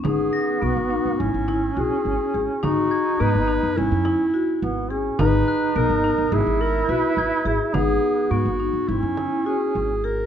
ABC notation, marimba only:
X:1
M:9/8
L:1/8
Q:3/8=70
K:C#dor
V:1 name="Marimba"
D2 B, D2 E F2 G | D2 B, D2 E F2 G | D2 B, D2 E F2 G | D2 B, D2 E F2 G |]